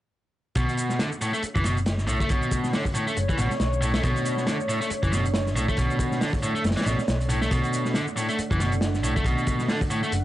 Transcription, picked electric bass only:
0.56 B1
1.43 muted picked electric bass stroke
1.56 F#1
2.08 B1
2.30 B1
3.17 F#1
3.39 A1
3.60 B1
4.04 B1
4.91 muted picked electric bass stroke
5.03 F#1
5.56 B1
5.78 B1
6.65 F#1
6.86 A1
7.08 B1
7.51 B1
8.39 muted picked electric bass stroke
8.51 F#1
9.04 B1
9.25 B1
10.12 F#1

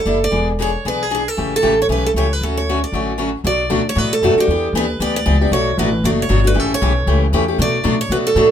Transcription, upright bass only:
0.06 F#1
0.32 E1
0.85 B1
1.38 A1
1.64 A1
1.88 B1
2.14 C#2
2.41 D2
2.92 A1
3.44 B1
3.70 D2
3.96 A2
4.22 F#2
4.36 muted upright bass stroke
4.47 E2
4.73 D#2
5.00 D2
5.26 C#2
5.51 B1
5.77 A1
6.03 F#1
6.30 G1
6.55 A1
6.82 B1
7.07 C#2
7.32 E2
7.59 B2
7.85 A2
8.09 B2
8.35 A2

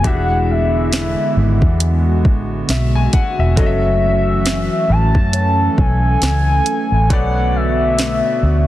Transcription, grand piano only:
0.04 E3 D4 F#4 G4 E5
0.13 G#4
2.70 E5
2.95 G#5
3.14 F#5
3.40 E5
3.56 F#3 C#4 F#4 A4 D#5
3.66 E5
7.10 B2 B3 A4 C#5 D5

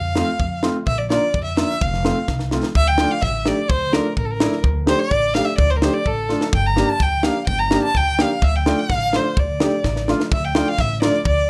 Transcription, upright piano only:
0.16 A3 C4 F4
0.63 A3 C4 F4
1.11 A#3 D4 F4
1.57 A#3 D4 F4
2.04 A3 C4 F4
2.52 A3 C4 F4
2.99 A3 D4 F4
3.45 A3 D4 G4
3.92 A3 D4 F4
4.40 A3 D4 E4
4.86 A3 D4 G4
5.35 A3 D4 G4
5.82 A3 D4 G4
6.29 A3 D4 F4
6.76 A#3 D4 G4
7.23 A#3 D4 G4
7.71 A#3 D4 G4
8.19 A#3 D4 G4
8.66 A3 D4 F4
9.13 A3 D4 F4
9.60 A3 D4 G4
10.08 A3 D4 F4
10.55 A3 D4 F4
11.02 A3 D4 F4

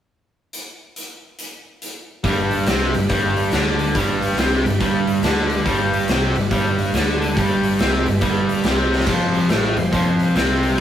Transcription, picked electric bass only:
2.24 G1
2.67 C2
2.95 G1
3.10 G1
3.53 D2
3.95 G1
4.37 C2
4.65 G1
4.80 G1
5.22 D2
5.65 G1
6.07 C2
6.35 G1
6.51 G1
6.93 D2
7.37 G1
7.79 C2
8.06 G1
8.22 G1
8.64 C2
9.07 F1
9.50 A1
9.77 F1
9.92 F1
10.35 C2

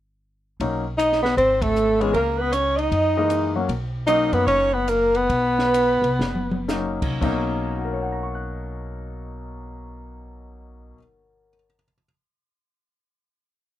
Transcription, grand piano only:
0.61 F#3 A#3 C#4 D#4
2.00 E3 G#3 B3 C#4
3.17 E3 G#3 A#3 D#4
3.56 F#3 A#3 C#4 F#4
4.08 F#3 A#3 C#4 D#4
6.68 F#3 A#3 C#4 D#4
7.21 B2 F#3 A#3 C#4 D#4
7.78 F#4
7.85 A#4
7.93 C#5
8.03 F#5
8.12 A#5
8.23 C#6
8.35 F#6

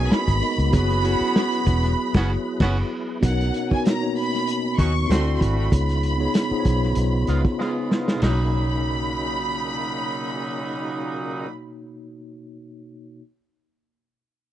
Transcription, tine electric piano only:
Already playing: A#3 B3 D#4 F#4 A#4 C#5
0.40 B3 D#4 F#4 A#4 D#5
0.70 B3 E4 F#4 G#4 C#5
1.02 B3 E4 F#4 G#4 C#5
3.20 B3 D#4 F#4 A#4 C#5
3.69 B3 D#4 F#4 A#4 C#5
4.00 A#3 B3 D#4 F#4 C#5
5.07 C4 E4 F#4 A4 D5
5.70 B3 D#4 F4 G#4 C#5
6.18 B3 D#4 F4 G#4 C#5
6.50 B3 D#4 F4 G#4 C5
6.60 C#5
8.15 B2 D#4
8.22 A#3 F#4
8.28 C#5

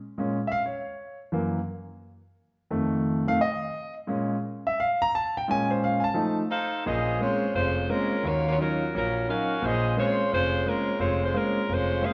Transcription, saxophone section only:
6.49 D#4 A4 C5 F5
6.86 C#4 G#4 C5 D#5
7.20 G#3 F4 C5 C#5
7.54 G#3 C#4 F4 C5
7.89 G#3 C#4 F4 A#4
8.25 A#3 F4 F#4 C#5
8.47 A#3 F4 F#4 C#5
8.59 F#3 C#4 F4 A#4
8.94 F#3 C#4 F4 A#4
9.30 C#4 F#4 A#4 F5
9.64 C#4 G#4 C5 D#5
9.98 G#3 F4 C5 C#5
10.32 G#3 C#4 F4 C5
10.66 G#3 C#4 F4 A#4
10.99 G#3 C4 F4 C#5
11.23 G#3 C#4 F4 C5
11.36 G#3 C#4 F4 A#4
11.71 G#3 C#4 F4 C5
12.03 C#4 G#4 C5 F5

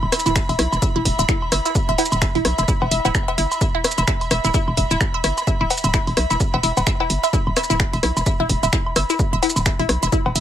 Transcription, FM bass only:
0.03 D1
0.26 D1
0.49 E1
0.59 B1
0.72 E1
0.96 E1
1.05 E1
1.19 D1
1.52 G1
1.89 D1
2.12 D1
2.35 E1
2.45 B1
2.59 E1
2.82 E1
2.91 E1
3.05 D1
3.38 G1
3.98 E1
4.31 E1
4.45 D1
4.68 E1
4.77 E1
4.91 D1
5.24 G1
5.61 D1
5.84 D1
6.07 E1
6.17 B1
6.31 E1
6.54 E1
6.64 E1
6.77 D1
7.10 G1
7.47 D1
7.70 D1
7.93 E1
8.03 B1
8.17 E1
8.40 E1
8.49 E1
8.63 D1
8.96 G1
9.33 D1
9.56 D1
9.79 E1
9.89 B1
10.03 E1
10.26 E1
10.36 E1

